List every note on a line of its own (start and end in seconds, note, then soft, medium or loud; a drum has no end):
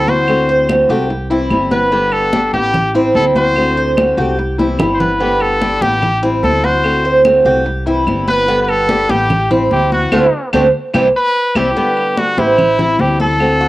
0.00 0.83 D2 loud
0.00 0.27 E3 medium
0.00 0.28 G3 medium
0.00 0.28 C4 medium
0.00 0.28 E4 medium
0.00 0.11 A4 loud
0.08 0.48 F#4 medium
0.08 0.70 C5 medium
0.08 high conga medium
0.28 0.68 D3 medium
0.28 0.69 A3 medium
0.28 0.69 C4 medium
0.28 0.69 F#4 medium
0.28 high conga soft
0.28 claves medium
0.49 0.89 C5 medium
0.49 high conga soft
0.69 0.89 D3 medium
0.69 0.89 A3 medium
0.69 0.89 C4 medium
0.69 0.89 F#4 medium
0.69 high conga loud
0.69 claves medium
0.89 1.47 C2 loud
0.89 1.10 A3 medium
0.89 1.09 C4 medium
0.89 1.09 F#4 medium
0.89 1.29 G4 medium
0.89 high conga soft
1.10 muted nylon-string guitar stroke medium
1.10 high conga soft
1.30 1.49 E3 medium
1.30 1.50 G3 medium
1.30 1.50 C4 medium
1.30 1.50 E4 medium
1.30 1.70 E4 medium
1.30 high conga soft
1.50 2.47 G1 medium
1.50 1.91 E3 soft
1.50 1.91 G3 medium
1.50 1.91 C4 medium
1.50 1.92 E4 medium
1.50 high conga medium
1.50 claves medium
1.71 1.91 B3 medium
1.71 2.14 B4 medium
1.71 high conga medium
1.91 2.31 D3 medium
1.91 2.32 G3 medium
1.91 2.32 B3 medium
1.91 2.33 G4 medium
1.91 high conga soft
2.12 2.53 A4 loud
2.12 high conga soft
2.12 claves medium
2.33 2.53 D3 medium
2.33 2.53 G3 medium
2.33 2.53 B3 medium
2.33 2.53 D4 medium
2.33 2.52 G4 medium
2.33 high conga loud
2.53 3.11 A1 loud
2.53 2.74 G3 medium
2.53 2.74 B3 medium
2.53 2.73 G4 medium
2.53 2.92 G4 loud
2.53 2.93 G4 medium
2.53 high conga medium
2.74 muted nylon-string guitar stroke medium
2.74 high conga soft
2.74 low conga medium
2.74 claves medium
2.94 3.15 G3 medium
2.94 3.35 C4 medium
2.94 3.15 C4 medium
2.94 3.14 E4 medium
2.94 high conga soft
3.14 4.11 D2 loud
3.14 3.55 E3 medium
3.14 3.56 G3 medium
3.14 3.56 C4 medium
3.14 3.56 E4 medium
3.14 3.25 A4 loud
3.14 high conga medium
3.35 3.76 F#4 medium
3.35 3.93 C5 loud
3.35 high conga medium
3.56 3.96 D3 medium
3.56 3.96 A3 medium
3.56 3.97 C4 medium
3.56 3.97 F#4 medium
3.56 high conga soft
3.56 claves medium
3.77 4.17 C5 medium
3.77 high conga soft
3.97 4.17 D3 medium
3.97 4.17 A3 medium
3.97 4.17 C4 medium
3.97 4.16 F#4 medium
3.97 high conga loud
3.97 claves medium
4.17 4.75 C2 loud
4.17 4.38 A3 medium
4.17 4.38 C4 medium
4.17 4.37 F#4 medium
4.17 4.58 G4 medium
4.17 high conga soft
4.38 muted nylon-string guitar stroke medium
4.38 high conga soft
4.58 4.78 E3 medium
4.58 4.79 G3 medium
4.58 4.78 C4 medium
4.58 4.78 E4 medium
4.58 4.99 E4 medium
4.58 high conga medium
4.79 5.75 G1 loud
4.79 5.19 E3 soft
4.79 5.19 G3 medium
4.79 5.20 C4 medium
4.79 5.20 E4 medium
4.79 low conga loud
4.79 claves medium
4.94 5.02 C5 medium
5.00 5.19 B3 medium
5.00 5.43 B4 medium
5.00 low conga loud
5.20 5.60 D3 medium
5.20 5.60 G3 medium
5.20 5.60 B3 medium
5.20 5.61 B3 medium
5.20 5.61 G4 medium
5.20 high conga soft
5.40 5.83 A4 medium
5.40 high conga soft
5.40 claves medium
5.61 5.81 D3 medium
5.61 5.81 G3 medium
5.61 5.81 B3 medium
5.61 5.81 D4 medium
5.61 5.80 G4 medium
5.61 high conga loud
5.81 6.39 A1 loud
5.81 6.01 G3 medium
5.81 6.02 B3 medium
5.81 6.01 G4 medium
5.81 6.23 G4 loud
5.81 6.22 G4 medium
5.81 high conga medium
6.02 muted nylon-string guitar stroke medium
6.02 high conga soft
6.02 low conga medium
6.02 claves medium
6.22 6.42 G3 medium
6.22 6.62 C4 medium
6.22 6.42 C4 medium
6.22 6.42 E4 medium
6.22 high conga soft
6.43 7.39 D2 loud
6.43 6.83 E3 medium
6.43 6.83 G3 medium
6.43 6.83 C4 medium
6.43 6.84 E4 soft
6.43 6.66 A4 loud
6.43 high conga medium
6.64 7.03 F#4 medium
6.64 7.26 C5 loud
6.64 high conga medium
6.84 7.24 D3 medium
6.84 7.24 A3 medium
6.84 7.25 C4 medium
6.84 7.25 F#4 medium
6.84 high conga soft
6.84 claves medium
7.04 7.45 C5 medium
7.04 high conga soft
7.25 7.45 D3 medium
7.25 7.45 A3 medium
7.25 7.45 C4 medium
7.25 7.44 F#4 medium
7.25 high conga loud
7.25 claves medium
7.45 8.03 C2 loud
7.45 7.66 A3 medium
7.45 7.65 C4 medium
7.45 7.65 F#4 medium
7.45 7.85 G4 medium
7.45 high conga soft
7.66 muted nylon-string guitar stroke medium
7.66 high conga soft
7.86 8.05 E3 medium
7.86 8.06 G3 medium
7.86 8.06 C4 medium
7.86 8.06 E4 medium
7.86 8.27 E4 medium
7.86 high conga soft
8.06 9.03 G1 loud
8.06 8.47 E3 medium
8.06 8.47 G3 medium
8.06 8.47 C4 medium
8.06 8.48 E4 medium
8.06 high conga medium
8.06 claves medium
8.28 8.47 B3 medium
8.28 8.59 B4 loud
8.28 high conga medium
8.48 8.87 D3 medium
8.48 8.88 G3 medium
8.48 8.88 B3 loud
8.48 8.88 B3 medium
8.48 8.89 G4 medium
8.48 high conga soft
8.62 8.71 B4 medium
8.69 9.12 A4 loud
8.69 high conga soft
8.69 claves medium
8.88 9.08 D3 medium
8.88 9.09 G3 medium
8.88 9.09 B3 medium
8.88 9.09 D4 medium
8.88 9.08 G4 medium
8.88 high conga loud
9.09 9.67 A1 loud
9.09 9.29 G3 medium
9.09 9.29 B3 medium
9.09 9.29 G4 medium
9.09 9.49 G4 medium
9.09 9.51 G4 loud
9.09 high conga medium
9.30 muted nylon-string guitar stroke medium
9.30 high conga soft
9.30 low conga loud
9.30 claves medium
9.50 9.70 G3 medium
9.50 9.91 C4 medium
9.50 9.71 C4 medium
9.50 9.70 E4 medium
9.50 high conga soft
9.50 low conga medium
9.71 10.09 D2 loud
9.71 10.11 E3 medium
9.71 10.11 G3 medium
9.71 10.11 C4 medium
9.71 10.12 E4 medium
9.71 9.91 G4 medium
9.71 high conga medium
9.92 10.11 F#4 medium
9.92 10.50 F#4 medium
9.92 high conga medium
10.12 10.27 D2 medium
10.12 10.25 A3 loud
10.12 10.26 C4 loud
10.12 10.25 C4 medium
10.12 10.25 D4 medium
10.12 10.26 D4 medium
10.12 10.26 F#4 medium
10.12 high conga loud
10.12 claves loud
10.53 10.68 D2 loud
10.53 10.66 A3 loud
10.53 10.66 C4 loud
10.53 10.66 D4 loud
10.53 10.67 D4 medium
10.53 10.66 F#4 medium
10.53 high conga loud
10.53 claves loud
10.94 11.09 C2 loud
10.94 11.07 E3 loud
10.94 11.07 G3 loud
10.94 11.07 C4 medium
10.94 11.07 C4 loud
10.94 11.07 E4 medium
10.94 11.07 G4 medium
10.94 high conga loud
10.94 claves loud
11.16 11.59 B4 loud
11.55 11.71 C2 medium
11.55 11.69 E3 medium
11.55 11.69 G3 loud
11.55 11.69 C4 loud
11.55 11.69 C4 medium
11.55 11.69 E4 medium
11.55 11.69 G4 medium
11.55 12.20 G4 medium
11.55 high conga loud
11.55 claves loud
11.76 12.37 D3 medium
11.76 12.37 G3 medium
11.76 12.16 B3 medium
11.76 12.37 B3 medium
11.76 12.36 G4 medium
11.76 high conga soft
11.97 high conga soft
11.97 claves medium
12.17 12.37 D4 medium
12.17 12.40 F#4 loud
12.17 high conga loud
12.37 12.95 A1 medium
12.37 12.57 G3 medium
12.37 12.58 B3 medium
12.37 13.02 E4 loud
12.37 12.57 G4 medium
12.37 12.77 C5 medium
12.37 high conga medium
12.58 muted nylon-string guitar stroke medium
12.58 high conga soft
12.58 low conga medium
12.58 claves medium
12.78 12.98 G3 medium
12.78 12.98 C4 medium
12.78 12.98 E4 medium
12.78 13.19 E4 medium
12.78 high conga soft
12.78 low conga medium
12.99 13.68 D2 loud
12.99 13.39 E3 medium
12.99 13.40 G3 soft
12.99 13.40 C4 medium
12.99 13.40 E4 medium
12.99 13.20 G4 medium
12.99 high conga medium
13.20 13.59 A4 medium
13.20 13.68 A4 loud
13.20 high conga medium
13.40 13.68 D3 medium
13.40 13.68 A3 medium
13.40 13.68 C4 medium
13.40 13.68 F#4 medium
13.40 high conga soft
13.40 claves medium
13.61 13.68 F#4 medium
13.61 high conga soft